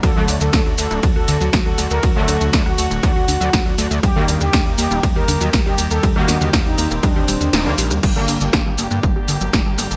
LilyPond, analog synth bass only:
\new Staff \with { instrumentName = "Analog synth bass" } { \clef bass \time 4/4 \key g \minor \tempo 4 = 120 d,16 d,16 d,16 d,16 d,16 d,16 d,16 d,,16 d,16 d,16 d,16 d,16 c,16 d,16 d,16 d,16 | d,16 d,16 d,16 d,16 d,16 d,16 d,16 d,,16 d,16 d,16 d,16 d,16 c,16 d,16 d,16 d,16 | ees,16 ees,16 ees,16 ees,16 ees,16 ees,16 ees,16 ees,,16 ees,16 ees,16 ees,16 ees,16 bes,,16 ees,16 ees,16 ees,16 | ees,16 ees,16 ees,16 ees,16 ees,16 ees,16 ees,16 ees,,16 ees,16 ees,16 ees,,16 ees,16 ees,,16 ees,16 bes,,16 ees,16 |
g,,16 g,,16 g,,16 g,,16 g,,16 g,,16 g,,16 g,16 g,,16 g,,16 g,,16 g,,16 d,,16 g,,16 g,,16 g,,16 | }